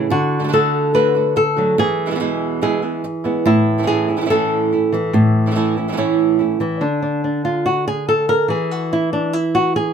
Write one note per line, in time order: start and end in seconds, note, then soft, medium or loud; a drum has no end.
0.00 0.10 C#3 medium
0.00 0.10 E3 medium
0.00 0.10 A3 soft
0.00 0.11 A3 soft
0.00 0.10 G#4 medium
0.10 1.76 D3 medium
0.10 0.53 F#4 medium
0.10 muted nylon-string guitar stroke medium
0.39 0.43 D3 soft
0.39 0.43 A3 soft
0.39 0.43 D4 soft
0.39 0.43 F#4 soft
0.44 0.47 D3 soft
0.44 0.47 A3 soft
0.44 0.48 D4 soft
0.44 0.48 F#4 soft
0.48 0.51 D3 soft
0.48 0.52 A3 medium
0.48 0.52 D4 medium
0.48 0.53 F#4 medium
0.53 0.93 D3 medium
0.53 0.93 A3 medium
0.53 0.94 D4 medium
0.53 0.94 F#4 medium
0.53 0.94 A4 medium
0.94 1.14 D3 medium
0.94 1.14 A3 medium
0.94 1.15 D4 medium
0.94 1.14 F#4 medium
0.94 1.36 B4 medium
1.15 1.35 A3 soft
1.15 1.35 D4 soft
1.15 1.35 F#4 soft
1.36 1.78 A4 medium
1.36 muted nylon-string guitar stroke medium
1.56 1.76 F#3 medium
1.56 1.78 A3 soft
1.56 1.77 D4 soft
1.56 1.77 F#4 soft
1.78 4.91 E3 medium
1.78 2.61 G#4 medium
1.78 muted nylon-string guitar stroke medium
2.06 2.10 B2 soft
2.06 2.10 E3 soft
2.06 2.10 G#3 soft
2.06 2.10 B3 soft
2.06 2.11 E4 soft
2.11 2.14 B2 soft
2.11 2.14 E3 soft
2.11 2.15 G#3 medium
2.11 2.15 B3 medium
2.11 2.15 E4 medium
2.15 2.19 B2 medium
2.15 2.19 E3 soft
2.15 2.19 G#3 medium
2.15 2.20 B3 medium
2.15 2.19 E4 medium
2.20 2.60 E2 medium
2.20 2.60 B2 medium
2.20 2.61 E3 medium
2.20 2.61 G#3 medium
2.20 2.62 B3 medium
2.20 2.61 E4 medium
2.62 2.82 E2 medium
2.62 2.82 B2 medium
2.62 2.82 E3 medium
2.62 2.82 G#3 medium
2.62 2.82 B3 medium
2.62 2.81 E4 medium
2.62 3.46 G#4 medium
2.82 3.03 E3 soft
2.82 3.03 G#3 soft
2.82 3.03 B3 soft
2.82 3.03 E4 soft
3.04 muted nylon-string guitar stroke medium
3.24 3.46 E3 soft
3.24 3.45 G#3 soft
3.24 3.45 B3 soft
3.24 3.44 B3 medium
3.24 3.45 E4 soft
3.46 5.11 A2 medium
3.46 4.30 E4 medium
3.46 muted nylon-string guitar stroke medium
3.78 3.81 E3 soft
3.78 3.82 A3 soft
3.78 3.83 C#4 soft
3.78 3.83 E4 soft
3.83 3.86 E3 soft
3.83 3.87 A3 medium
3.83 3.87 C#4 medium
3.83 3.87 E4 medium
3.87 4.08 A2 medium
3.87 4.08 E3 medium
3.87 4.08 A3 medium
3.87 4.08 C#4 medium
3.87 4.07 E4 medium
3.87 4.29 G#4 medium
4.08 4.16 A3 soft
4.08 4.16 C#4 soft
4.08 4.17 E4 soft
4.17 4.20 E3 soft
4.17 4.20 A3 soft
4.17 4.21 C#4 soft
4.17 4.21 E4 medium
4.21 4.24 E3 medium
4.21 4.25 A3 medium
4.21 4.25 C#4 medium
4.21 4.26 E4 medium
4.25 4.29 E3 medium
4.25 4.30 A3 medium
4.25 4.30 C#4 medium
4.25 4.30 E4 medium
4.30 4.71 A2 medium
4.30 4.71 E3 medium
4.30 4.71 A3 medium
4.30 4.71 C#4 medium
4.30 4.71 E4 medium
4.30 6.81 A4 medium
4.72 4.93 A3 soft
4.72 4.93 C#4 soft
4.72 4.92 E4 soft
4.92 6.59 E3 medium
4.92 muted nylon-string guitar stroke medium
5.13 6.79 A2 medium
5.13 muted nylon-string guitar stroke medium
5.46 5.50 E3 soft
5.46 5.50 A3 soft
5.46 5.51 C#4 soft
5.46 5.51 E4 soft
5.51 5.55 E3 soft
5.51 5.55 A3 medium
5.51 5.55 C#4 medium
5.51 5.56 E4 medium
5.56 5.76 A2 medium
5.56 5.76 E3 medium
5.56 5.76 A3 medium
5.56 5.76 C#4 medium
5.56 5.76 E4 medium
5.77 5.87 A3 soft
5.77 5.87 C#4 soft
5.77 5.88 E4 soft
5.88 5.91 E3 soft
5.88 5.92 A3 soft
5.88 5.92 C#4 soft
5.88 5.92 E4 soft
5.92 5.96 E3 medium
5.92 5.97 A3 medium
5.92 5.97 C#4 medium
5.92 5.97 E4 medium
5.97 6.38 A2 medium
5.97 6.38 E3 medium
5.97 6.39 A3 medium
5.97 6.79 C#4 soft
5.97 6.39 C#4 medium
5.97 6.38 E4 medium
6.39 6.60 A3 soft
6.39 6.60 C#4 soft
6.39 6.59 E4 soft
6.60 6.81 E3 medium
6.60 muted nylon-string guitar stroke medium
6.81 8.46 D3 medium
6.81 7.01 D4 soft
7.02 7.23 D4 soft
7.24 7.44 D4 soft
7.45 7.65 F4 medium
7.66 7.86 F#4 medium
7.88 8.08 G#4 medium
8.09 8.29 A4 medium
8.29 8.49 A#4 loud
8.48 9.93 E3 medium
8.48 8.71 G#4 medium
8.71 8.92 F#4 medium
8.93 9.12 E4 medium
9.13 9.33 D4 medium
9.33 9.54 E4 medium
9.55 9.75 F#4 medium
9.76 9.93 G#4 medium